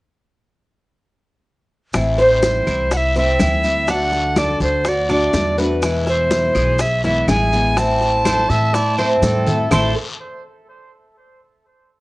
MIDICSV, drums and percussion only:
0, 0, Header, 1, 2, 480
1, 0, Start_track
1, 0, Tempo, 485830
1, 1915, Time_signature, 4, 2, 24, 8
1, 11857, End_track
2, 0, Start_track
2, 0, Title_t, "Drums"
2, 1911, Note_on_c, 9, 70, 58
2, 1917, Note_on_c, 9, 60, 66
2, 1917, Note_on_c, 9, 75, 59
2, 1921, Note_on_c, 9, 63, 32
2, 1922, Note_on_c, 9, 74, 64
2, 2010, Note_off_c, 9, 70, 0
2, 2016, Note_off_c, 9, 60, 0
2, 2016, Note_off_c, 9, 75, 0
2, 2020, Note_off_c, 9, 63, 0
2, 2020, Note_off_c, 9, 74, 0
2, 2157, Note_on_c, 9, 63, 30
2, 2158, Note_on_c, 9, 70, 27
2, 2162, Note_on_c, 9, 60, 31
2, 2256, Note_off_c, 9, 63, 0
2, 2257, Note_off_c, 9, 70, 0
2, 2261, Note_off_c, 9, 60, 0
2, 2396, Note_on_c, 9, 73, 63
2, 2397, Note_on_c, 9, 63, 89
2, 2398, Note_on_c, 9, 60, 59
2, 2398, Note_on_c, 9, 70, 68
2, 2494, Note_off_c, 9, 73, 0
2, 2496, Note_off_c, 9, 60, 0
2, 2496, Note_off_c, 9, 63, 0
2, 2497, Note_off_c, 9, 70, 0
2, 2634, Note_on_c, 9, 63, 29
2, 2637, Note_on_c, 9, 60, 30
2, 2639, Note_on_c, 9, 70, 27
2, 2639, Note_on_c, 9, 75, 54
2, 2640, Note_on_c, 9, 73, 60
2, 2733, Note_off_c, 9, 63, 0
2, 2736, Note_off_c, 9, 60, 0
2, 2738, Note_off_c, 9, 70, 0
2, 2738, Note_off_c, 9, 75, 0
2, 2739, Note_off_c, 9, 73, 0
2, 2876, Note_on_c, 9, 70, 62
2, 2878, Note_on_c, 9, 60, 65
2, 2878, Note_on_c, 9, 63, 30
2, 2879, Note_on_c, 9, 74, 61
2, 2975, Note_off_c, 9, 70, 0
2, 2976, Note_off_c, 9, 63, 0
2, 2977, Note_off_c, 9, 60, 0
2, 2978, Note_off_c, 9, 74, 0
2, 3115, Note_on_c, 9, 63, 34
2, 3119, Note_on_c, 9, 60, 32
2, 3121, Note_on_c, 9, 70, 29
2, 3214, Note_off_c, 9, 63, 0
2, 3218, Note_off_c, 9, 60, 0
2, 3219, Note_off_c, 9, 70, 0
2, 3353, Note_on_c, 9, 60, 31
2, 3353, Note_on_c, 9, 61, 75
2, 3353, Note_on_c, 9, 75, 61
2, 3355, Note_on_c, 9, 70, 68
2, 3356, Note_on_c, 9, 63, 74
2, 3361, Note_on_c, 9, 73, 61
2, 3452, Note_off_c, 9, 60, 0
2, 3452, Note_off_c, 9, 61, 0
2, 3452, Note_off_c, 9, 75, 0
2, 3454, Note_off_c, 9, 70, 0
2, 3455, Note_off_c, 9, 63, 0
2, 3460, Note_off_c, 9, 73, 0
2, 3588, Note_on_c, 9, 70, 27
2, 3602, Note_on_c, 9, 73, 68
2, 3687, Note_off_c, 9, 70, 0
2, 3701, Note_off_c, 9, 73, 0
2, 3830, Note_on_c, 9, 70, 63
2, 3834, Note_on_c, 9, 60, 66
2, 3837, Note_on_c, 9, 63, 30
2, 3842, Note_on_c, 9, 74, 66
2, 3929, Note_off_c, 9, 70, 0
2, 3933, Note_off_c, 9, 60, 0
2, 3936, Note_off_c, 9, 63, 0
2, 3940, Note_off_c, 9, 74, 0
2, 4072, Note_on_c, 9, 63, 32
2, 4074, Note_on_c, 9, 70, 26
2, 4075, Note_on_c, 9, 60, 30
2, 4171, Note_off_c, 9, 63, 0
2, 4172, Note_off_c, 9, 70, 0
2, 4174, Note_off_c, 9, 60, 0
2, 4311, Note_on_c, 9, 63, 87
2, 4311, Note_on_c, 9, 70, 66
2, 4313, Note_on_c, 9, 60, 57
2, 4313, Note_on_c, 9, 75, 62
2, 4318, Note_on_c, 9, 73, 65
2, 4409, Note_off_c, 9, 63, 0
2, 4410, Note_off_c, 9, 70, 0
2, 4412, Note_off_c, 9, 60, 0
2, 4412, Note_off_c, 9, 75, 0
2, 4417, Note_off_c, 9, 73, 0
2, 4548, Note_on_c, 9, 70, 27
2, 4549, Note_on_c, 9, 63, 31
2, 4554, Note_on_c, 9, 60, 31
2, 4557, Note_on_c, 9, 73, 61
2, 4647, Note_off_c, 9, 70, 0
2, 4648, Note_off_c, 9, 63, 0
2, 4652, Note_off_c, 9, 60, 0
2, 4655, Note_off_c, 9, 73, 0
2, 4790, Note_on_c, 9, 60, 64
2, 4790, Note_on_c, 9, 70, 64
2, 4794, Note_on_c, 9, 63, 31
2, 4796, Note_on_c, 9, 74, 66
2, 4889, Note_off_c, 9, 60, 0
2, 4889, Note_off_c, 9, 70, 0
2, 4892, Note_off_c, 9, 63, 0
2, 4895, Note_off_c, 9, 74, 0
2, 5031, Note_on_c, 9, 63, 32
2, 5032, Note_on_c, 9, 70, 29
2, 5033, Note_on_c, 9, 60, 32
2, 5034, Note_on_c, 9, 75, 63
2, 5130, Note_off_c, 9, 63, 0
2, 5131, Note_off_c, 9, 70, 0
2, 5132, Note_off_c, 9, 60, 0
2, 5133, Note_off_c, 9, 75, 0
2, 5272, Note_on_c, 9, 70, 73
2, 5273, Note_on_c, 9, 60, 33
2, 5273, Note_on_c, 9, 61, 79
2, 5274, Note_on_c, 9, 63, 81
2, 5275, Note_on_c, 9, 73, 65
2, 5371, Note_off_c, 9, 70, 0
2, 5372, Note_off_c, 9, 60, 0
2, 5372, Note_off_c, 9, 61, 0
2, 5372, Note_off_c, 9, 63, 0
2, 5374, Note_off_c, 9, 73, 0
2, 5517, Note_on_c, 9, 73, 67
2, 5519, Note_on_c, 9, 70, 28
2, 5616, Note_off_c, 9, 73, 0
2, 5617, Note_off_c, 9, 70, 0
2, 5753, Note_on_c, 9, 63, 34
2, 5753, Note_on_c, 9, 70, 59
2, 5756, Note_on_c, 9, 74, 70
2, 5756, Note_on_c, 9, 75, 61
2, 5758, Note_on_c, 9, 60, 63
2, 5852, Note_off_c, 9, 63, 0
2, 5852, Note_off_c, 9, 70, 0
2, 5855, Note_off_c, 9, 74, 0
2, 5855, Note_off_c, 9, 75, 0
2, 5857, Note_off_c, 9, 60, 0
2, 5994, Note_on_c, 9, 60, 33
2, 5994, Note_on_c, 9, 63, 33
2, 5998, Note_on_c, 9, 70, 26
2, 6093, Note_off_c, 9, 60, 0
2, 6093, Note_off_c, 9, 63, 0
2, 6096, Note_off_c, 9, 70, 0
2, 6232, Note_on_c, 9, 60, 58
2, 6232, Note_on_c, 9, 73, 65
2, 6233, Note_on_c, 9, 63, 84
2, 6236, Note_on_c, 9, 70, 65
2, 6331, Note_off_c, 9, 60, 0
2, 6331, Note_off_c, 9, 73, 0
2, 6332, Note_off_c, 9, 63, 0
2, 6335, Note_off_c, 9, 70, 0
2, 6471, Note_on_c, 9, 73, 62
2, 6472, Note_on_c, 9, 75, 54
2, 6476, Note_on_c, 9, 70, 27
2, 6478, Note_on_c, 9, 63, 30
2, 6479, Note_on_c, 9, 60, 33
2, 6570, Note_off_c, 9, 73, 0
2, 6571, Note_off_c, 9, 75, 0
2, 6575, Note_off_c, 9, 70, 0
2, 6577, Note_off_c, 9, 60, 0
2, 6577, Note_off_c, 9, 63, 0
2, 6706, Note_on_c, 9, 70, 69
2, 6712, Note_on_c, 9, 60, 66
2, 6713, Note_on_c, 9, 74, 64
2, 6719, Note_on_c, 9, 63, 32
2, 6805, Note_off_c, 9, 70, 0
2, 6811, Note_off_c, 9, 60, 0
2, 6811, Note_off_c, 9, 74, 0
2, 6818, Note_off_c, 9, 63, 0
2, 6954, Note_on_c, 9, 60, 32
2, 6954, Note_on_c, 9, 70, 28
2, 6958, Note_on_c, 9, 63, 33
2, 7053, Note_off_c, 9, 60, 0
2, 7053, Note_off_c, 9, 70, 0
2, 7057, Note_off_c, 9, 63, 0
2, 7194, Note_on_c, 9, 63, 75
2, 7194, Note_on_c, 9, 75, 64
2, 7195, Note_on_c, 9, 73, 62
2, 7196, Note_on_c, 9, 70, 67
2, 7198, Note_on_c, 9, 60, 33
2, 7198, Note_on_c, 9, 61, 83
2, 7293, Note_off_c, 9, 63, 0
2, 7293, Note_off_c, 9, 75, 0
2, 7294, Note_off_c, 9, 73, 0
2, 7295, Note_off_c, 9, 70, 0
2, 7296, Note_off_c, 9, 60, 0
2, 7296, Note_off_c, 9, 61, 0
2, 7437, Note_on_c, 9, 70, 30
2, 7439, Note_on_c, 9, 73, 61
2, 7536, Note_off_c, 9, 70, 0
2, 7538, Note_off_c, 9, 73, 0
2, 7677, Note_on_c, 9, 60, 64
2, 7677, Note_on_c, 9, 63, 34
2, 7680, Note_on_c, 9, 70, 62
2, 7682, Note_on_c, 9, 74, 64
2, 7775, Note_off_c, 9, 60, 0
2, 7776, Note_off_c, 9, 63, 0
2, 7779, Note_off_c, 9, 70, 0
2, 7780, Note_off_c, 9, 74, 0
2, 7916, Note_on_c, 9, 60, 33
2, 7918, Note_on_c, 9, 63, 31
2, 7919, Note_on_c, 9, 70, 28
2, 8015, Note_off_c, 9, 60, 0
2, 8017, Note_off_c, 9, 63, 0
2, 8018, Note_off_c, 9, 70, 0
2, 8155, Note_on_c, 9, 60, 56
2, 8155, Note_on_c, 9, 63, 91
2, 8155, Note_on_c, 9, 75, 66
2, 8161, Note_on_c, 9, 73, 67
2, 8164, Note_on_c, 9, 70, 69
2, 8254, Note_off_c, 9, 60, 0
2, 8254, Note_off_c, 9, 63, 0
2, 8254, Note_off_c, 9, 75, 0
2, 8259, Note_off_c, 9, 73, 0
2, 8263, Note_off_c, 9, 70, 0
2, 8396, Note_on_c, 9, 60, 33
2, 8399, Note_on_c, 9, 63, 29
2, 8400, Note_on_c, 9, 73, 62
2, 8405, Note_on_c, 9, 70, 27
2, 8495, Note_off_c, 9, 60, 0
2, 8498, Note_off_c, 9, 63, 0
2, 8499, Note_off_c, 9, 73, 0
2, 8504, Note_off_c, 9, 70, 0
2, 8636, Note_on_c, 9, 63, 31
2, 8637, Note_on_c, 9, 60, 64
2, 8639, Note_on_c, 9, 70, 69
2, 8639, Note_on_c, 9, 74, 67
2, 8735, Note_off_c, 9, 63, 0
2, 8736, Note_off_c, 9, 60, 0
2, 8738, Note_off_c, 9, 70, 0
2, 8738, Note_off_c, 9, 74, 0
2, 8875, Note_on_c, 9, 63, 31
2, 8875, Note_on_c, 9, 70, 27
2, 8877, Note_on_c, 9, 60, 32
2, 8878, Note_on_c, 9, 75, 66
2, 8973, Note_off_c, 9, 63, 0
2, 8974, Note_off_c, 9, 70, 0
2, 8976, Note_off_c, 9, 60, 0
2, 8977, Note_off_c, 9, 75, 0
2, 9116, Note_on_c, 9, 63, 69
2, 9118, Note_on_c, 9, 70, 66
2, 9119, Note_on_c, 9, 73, 64
2, 9120, Note_on_c, 9, 60, 33
2, 9120, Note_on_c, 9, 61, 74
2, 9215, Note_off_c, 9, 63, 0
2, 9216, Note_off_c, 9, 70, 0
2, 9218, Note_off_c, 9, 60, 0
2, 9218, Note_off_c, 9, 61, 0
2, 9218, Note_off_c, 9, 73, 0
2, 9352, Note_on_c, 9, 73, 67
2, 9354, Note_on_c, 9, 64, 72
2, 9359, Note_on_c, 9, 70, 30
2, 9451, Note_off_c, 9, 73, 0
2, 9453, Note_off_c, 9, 64, 0
2, 9457, Note_off_c, 9, 70, 0
2, 9593, Note_on_c, 9, 74, 85
2, 9596, Note_on_c, 9, 61, 82
2, 9596, Note_on_c, 9, 64, 89
2, 9599, Note_on_c, 9, 75, 92
2, 9600, Note_on_c, 9, 70, 88
2, 9692, Note_off_c, 9, 74, 0
2, 9695, Note_off_c, 9, 61, 0
2, 9695, Note_off_c, 9, 64, 0
2, 9698, Note_off_c, 9, 70, 0
2, 9698, Note_off_c, 9, 75, 0
2, 11857, End_track
0, 0, End_of_file